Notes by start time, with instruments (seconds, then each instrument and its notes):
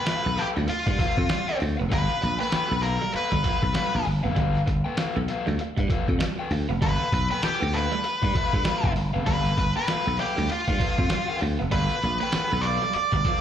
Already playing: lead electric guitar B4
0.05 overdriven electric guitar A4 B4 F5, snare, closed hi-hat
0.23 slap bass B1, clean electric guitar B3, muted overdriven electric guitar stroke
0.36 lead electric guitar G4, overdriven electric guitar A4 B4 F5, muted clean electric guitar stroke, snare, closed hi-hat
0.55 slap bass D2, clean electric guitar G3, muted overdriven electric guitar stroke, snare
0.67 lead electric guitar F4, muted overdriven electric guitar stroke, muted clean electric guitar stroke, muted slap bass stroke, closed hi-hat
0.86 slap bass G2, clean electric guitar G3, muted overdriven electric guitar stroke, kick, closed hi-hat
0.99 clean electric guitar F3, overdriven electric guitar A4 B4 F5, kick, closed hi-hat
1.17 slap bass F2, muted overdriven electric guitar stroke, kick
1.29 clean electric guitar G3, muted overdriven electric guitar stroke, snare, closed hi-hat
1.48 overdriven electric guitar A4 B4 G5, muted clean electric guitar stroke
1.59 slap bass D2, muted overdriven electric guitar stroke, open hi-hat
1.77 slap bass F1, clean electric guitar B3, muted overdriven electric guitar stroke
1.89 slap bass G1, clean electric guitar G3, overdriven electric guitar A4 B4 F5, kick, closed hi-hat
2.10 snare
2.22 slap bass A#1, muted overdriven electric guitar stroke, muted clean electric guitar stroke, closed hi-hat
2.39 clean electric guitar A#3, overdriven electric guitar A4 B4 G5
2.49 overdriven electric guitar A4 B4 G5, snare, closed hi-hat
2.54 muted slap bass stroke
2.69 slap bass B1, clean electric guitar B3, muted overdriven electric guitar stroke
2.81 overdriven electric guitar A4 B4 F5, lead electric guitar A#4, muted clean electric guitar stroke, closed hi-hat
3.00 clean electric guitar G3, muted overdriven electric guitar stroke, snare
3.12 overdriven electric guitar A4 B4 F5, muted clean electric guitar stroke, muted slap bass stroke, closed hi-hat
3.31 slap bass G1, clean electric guitar G3, muted overdriven electric guitar stroke, kick, closed hi-hat
3.43 clean electric guitar F3, overdriven electric guitar A4 B4 F5, kick, closed hi-hat
3.63 slap bass B1, muted overdriven electric guitar stroke, kick
3.73 clean electric guitar G3, overdriven electric guitar A4 B4 F5, snare, closed hi-hat
3.94 slap bass A#1, muted clean electric guitar stroke
4.05 slap bass G1, muted overdriven electric guitar stroke, open hi-hat
4.23 slap bass F1, clean electric guitar B3, overdriven electric guitar A4 B4 F5
4.35 slap bass G1, clean electric guitar G3, overdriven electric guitar A4 B4 F5, kick, closed hi-hat
4.55 snare
4.66 slap bass G1, muted overdriven electric guitar stroke, muted clean electric guitar stroke, kick, closed hi-hat
4.85 clean electric guitar A#3, overdriven electric guitar A4 B4 G5
4.97 overdriven electric guitar A4 B4 F5, snare, closed hi-hat
5.16 slap bass B1, clean electric guitar B3, muted overdriven electric guitar stroke
5.28 overdriven electric guitar A4 B4 F5, muted clean electric guitar stroke, snare, closed hi-hat
5.46 slap bass D2, clean electric guitar G3, muted overdriven electric guitar stroke, snare
5.59 muted clean electric guitar stroke, muted slap bass stroke, muted overdriven electric guitar stroke, closed hi-hat
5.77 slap bass G2, clean electric guitar G3, muted overdriven electric guitar stroke, kick, closed hi-hat
5.88 clean electric guitar F3, overdriven electric guitar A4, kick, closed hi-hat
5.92 overdriven electric guitar B4 F5
6.08 slap bass F2, muted overdriven electric guitar stroke, kick
6.19 clean electric guitar G3, muted overdriven electric guitar stroke, snare, closed hi-hat
6.38 overdriven electric guitar A4 B4 G5, muted clean electric guitar stroke
6.51 slap bass D2, muted overdriven electric guitar stroke, open hi-hat
6.69 slap bass F1, clean electric guitar B3, muted overdriven electric guitar stroke
6.81 slap bass G1, clean electric guitar G3, overdriven electric guitar A4 B4 F5, kick, closed hi-hat
7.00 snare
7.12 slap bass B1, muted clean electric guitar stroke, muted overdriven electric guitar stroke, kick, closed hi-hat
7.30 clean electric guitar A#3, overdriven electric guitar A4 B4 G5
7.43 lead electric guitar G4, overdriven electric guitar A4 B4 G5, muted slap bass stroke, snare, closed hi-hat
7.61 slap bass D2, clean electric guitar B3, muted overdriven electric guitar stroke
7.73 overdriven electric guitar A4 B4 F5, muted clean electric guitar stroke, closed hi-hat
7.92 clean electric guitar G3, muted overdriven electric guitar stroke, snare, closed hi-hat
8.04 muted clean electric guitar stroke, muted overdriven electric guitar stroke, closed hi-hat
8.22 slap bass G2, clean electric guitar G3, muted overdriven electric guitar stroke, kick, closed hi-hat
8.34 clean electric guitar F3, overdriven electric guitar A4 B4 F5, kick, closed hi-hat
8.53 slap bass G2, muted overdriven electric guitar stroke, kick
8.65 clean electric guitar G3, overdriven electric guitar A4 B4 F5, snare, closed hi-hat
8.83 slap bass F1, muted clean electric guitar stroke, kick
8.96 slap bass G1, muted overdriven electric guitar stroke, open hi-hat
9.13 slap bass F1, clean electric guitar B3, overdriven electric guitar A4 B4 F5
9.26 slap bass G1, clean electric guitar G3, overdriven electric guitar A4 B4 F5, kick, closed hi-hat
9.45 snare
9.57 slap bass G1, muted clean electric guitar stroke, muted overdriven electric guitar stroke, kick, closed hi-hat
9.76 clean electric guitar A#3, overdriven electric guitar A4 B4 G5
9.88 overdriven electric guitar A4 B4 F5, snare, closed hi-hat
10.06 slap bass B1, clean electric guitar B3, muted overdriven electric guitar stroke
10.18 lead electric guitar G4, overdriven electric guitar A4 B4 F5, muted clean electric guitar stroke, snare, closed hi-hat
10.36 slap bass D2, clean electric guitar G3, muted overdriven electric guitar stroke, snare
10.49 lead electric guitar F4, muted clean electric guitar stroke, muted overdriven electric guitar stroke, muted slap bass stroke, closed hi-hat
10.68 slap bass G2, clean electric guitar G3, muted overdriven electric guitar stroke, kick, closed hi-hat
10.80 clean electric guitar F3, overdriven electric guitar A4 B4 F5, kick, closed hi-hat
10.98 slap bass F2, muted overdriven electric guitar stroke, kick
11.09 clean electric guitar G3, muted overdriven electric guitar stroke, snare, closed hi-hat
11.28 overdriven electric guitar A4 B4 G5, muted clean electric guitar stroke
11.41 slap bass D2, muted overdriven electric guitar stroke, open hi-hat
11.59 slap bass F1, clean electric guitar B3, muted overdriven electric guitar stroke
11.71 slap bass G1, clean electric guitar G3, overdriven electric guitar A4 B4 F5, kick, closed hi-hat
11.90 snare
12.02 slap bass A#1, muted clean electric guitar stroke, muted overdriven electric guitar stroke, closed hi-hat
12.20 clean electric guitar A#3, overdriven electric guitar B4 G5
12.24 overdriven electric guitar A4
12.32 overdriven electric guitar A4 B4 G5, muted slap bass stroke, snare, closed hi-hat
12.51 slap bass B1, clean electric guitar B3, muted overdriven electric guitar stroke
12.61 overdriven electric guitar A4 B4, lead electric guitar D5, muted clean electric guitar stroke, closed hi-hat
12.66 overdriven electric guitar F5
12.82 clean electric guitar G3, muted overdriven electric guitar stroke, snare
12.93 lead electric guitar D5, muted clean electric guitar stroke, muted slap bass stroke, muted overdriven electric guitar stroke, closed hi-hat
13.11 slap bass G1, clean electric guitar G3, muted overdriven electric guitar stroke, kick, closed hi-hat
13.25 clean electric guitar F3, overdriven electric guitar A4 B4 F5, kick, closed hi-hat